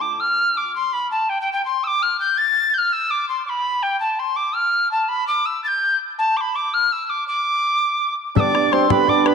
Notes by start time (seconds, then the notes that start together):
0.01 D6
0.20 F6
0.57 D6
0.75 C6
0.93 B5
1.11 A5
1.29 G5
1.41 G5
1.53 G5
1.65 C6
1.84 D6 E6
2.02 F6
2.20 G6
2.38 A6
2.74 G6
2.78 F6
2.93 E6
3.11 D6
3.29 C6
3.46 B5 D6
3.83 G5
4.00 A5
4.19 C6
4.36 D6
4.55 F6
4.91 A5
5.09 B5
5.27 D6
5.46 E6
5.64 G6 A6
6.19 A5
6.37 D6
6.41 B5
6.56 D6
6.74 F6
6.92 E6
7.07 D6 E6
7.28 D6
8.35 G2 D3 G3 B3 D4 G4 D5 E6, bodhran
8.40 D6
8.55 G3 B3 D4, bodhran
8.71 G3 B3 C4 D4 G4 C5 C6, bodhran
8.90 G2 D3 G3 B3 D4 G4 B4 B5, bodhran
9.07 G3 B3 D4 G4 D5 D6, bodhran
9.25 G3 B3 D4 G4 B4 B5, bodhran